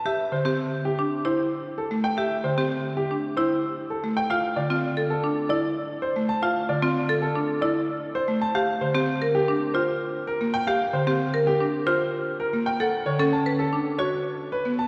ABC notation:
X:1
M:4/4
L:1/16
Q:1/4=113
K:Gdor
V:1 name="Grand piano"
e z c z3 G z2 c z3 A z g | e z c z3 G z2 c z3 A z g | f z d z3 A z2 d z3 c z a | f z d z3 A z2 d z3 c z a |
f z c z3 G z2 c z3 B z g | f z c z3 G z2 c z3 B z g | ^f z ^c z a z A z2 c z3 =B z a |]
V:2 name="Marimba"
G z2 G z3 D z E z6 | G z2 G z3 D z E z6 | F z2 F z A z D z E z6 | F z2 F z A z D z E z6 |
G z2 G z B z D z F z6 | G z2 G z B z D z F z6 | A z2 A z =B z D z ^F z6 |]
V:3 name="Marimba"
z2 D, C z8 z2 A, z | z2 D, C z8 z2 A, z | z2 D, C z8 z2 A, z | z2 D, C z8 z2 A, z |
z2 D, C z8 z2 B, z | z2 D, C z8 z2 B, z | z2 D, ^C z8 z2 =B, z |]